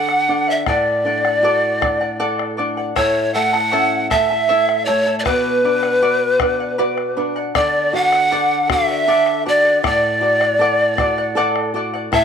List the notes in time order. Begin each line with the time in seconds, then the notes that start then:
Already playing: D3 A4 D5 F#5
0.09 bombo rim
0.29 D4 A4 D5 F#5
0.48 D5 E5 F#5
0.66 A2 A4 D5 F#5, bombo rim, bombo low
1.05 D4 A4 D5 F#5, bombo rim
1.25 D5 F#5, bombo rim
1.43 F#4 A4 D5 F#5, bombo rim
1.81 D4 A4 D5 F#5, bombo rim, bombo low
2.01 D5 F#5
2.20 A4 D5 F#5
2.39 bombo rim
2.57 D4 A4 D5 F#5
2.77 D5 F#5
2.96 A2 E4 A4 C#5 E5 A5, bombo rim, bombo low
3.34 A3 E4 A4 E5 F#5 A5
3.53 E4 A4 A5, bombo rim
3.72 C#4 E4 A4 C#5 E5 A5
4.10 A3 E4 A4 E5 A5, bombo rim, bombo low
4.30 E4 A4 A5
4.49 E4 A4 C#5 E5 A5
4.69 bombo rim
4.85 A3 E4 A4 C#5 E5 A5
5.06 E4 A4 A5
5.19 D5
5.24 B2 B4 D5 F#5, bombo rim, bombo low
5.65 D4 B4 D5 F#5, bombo rim
5.82 D5 F#5, bombo rim
6.02 F#4 B4 D5 F#5, bombo rim
6.40 D4 B4 D5 F#5, bombo rim, bombo low
6.60 D5 F#5
6.78 F#4 B4 D5 F#5
6.98 bombo rim
7.16 D4 B4 D5 F#5, bombo rim
7.36 D5 F#5
7.55 D3 A4 D5 F#5, bombo rim, bombo low
7.93 F#4 A4 D5 F#5, bombo rim
8.12 D5 F#5, bombo rim
8.31 A4 D5 F#5, bombo rim
8.70 F#4 A4 D5 E5 F#5, bombo rim, bombo low
8.89 D5 F#5
9.08 A4 D5 F#5
9.26 bombo rim
9.45 F#4 A4 D5 F#5
9.65 D5 F#5
9.83 A2 A4 D5 F#5, bombo rim, bombo low
10.21 F#4 A4 D5 F#5, bombo rim
10.40 D5 F#5, bombo rim
10.59 A4 D5 F#5, bombo rim
10.98 F#4 A4 D5 F#5, bombo rim, bombo low
11.18 D5 F#5
11.35 A4 D5 F#5
11.56 bombo rim
11.74 F#4 A4 D5 F#5
11.94 D5 F#5
12.12 A2 E4 A4 C#5 E5 A5, bombo rim, bombo low